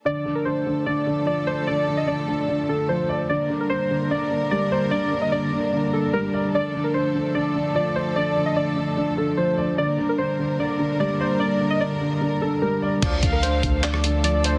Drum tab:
CC |----------------|----------------|----------------|----------------|
HH |----------------|----------------|----------------|----------------|
CP |----------------|----------------|----------------|----------------|
SD |----------------|----------------|----------------|----------------|
BD |----------------|----------------|----------------|----------------|

CC |----------------|----------------|----------------|----------------|
HH |----------------|----------------|----------------|----------------|
CP |----------------|----------------|----------------|----------------|
SD |----------------|----------------|----------------|----------------|
BD |----------------|----------------|----------------|----------------|

CC |x---------------|
HH |x-x-x-x-x-x-x-x-|
CP |--------x-------|
SD |---------r------|
BD |o-o---o---------|